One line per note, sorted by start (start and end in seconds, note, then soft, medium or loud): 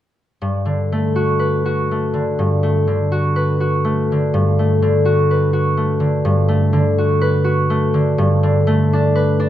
0.42 2.38 G2 soft
0.65 2.12 D3 soft
0.92 1.90 A3 soft
1.16 1.64 F#4 soft
1.39 3.35 B4 soft
1.65 3.10 F#4 soft
1.91 2.62 A3 soft
2.14 2.86 D3 soft
2.39 4.33 G2 soft
2.63 3.83 A3 soft
2.87 4.11 D3 soft
3.12 3.59 F#4 soft
3.36 5.29 B4 soft
3.60 5.04 F#4 soft
3.85 4.58 A3 soft
4.12 4.81 D3 soft
4.34 6.24 G2 soft
4.59 5.76 A3 soft
4.82 5.99 D3 soft
5.05 5.52 F#4 soft
5.31 7.20 B4 soft
5.53 6.97 F#4 soft
5.77 6.47 A3 soft
6.00 6.72 D3 soft
6.25 8.17 G2 soft
6.48 7.69 A3 soft
6.73 7.93 D3 soft
6.98 7.43 F#4 soft
7.21 9.14 B4 soft
7.44 8.23 F#4 soft
7.70 8.66 A3 soft
7.94 8.23 D3 soft
8.18 9.49 G2 soft
8.43 9.49 D3 soft
8.67 9.49 A3 soft
8.93 9.38 D4 soft
9.15 9.49 B4 soft
9.40 9.49 D4 soft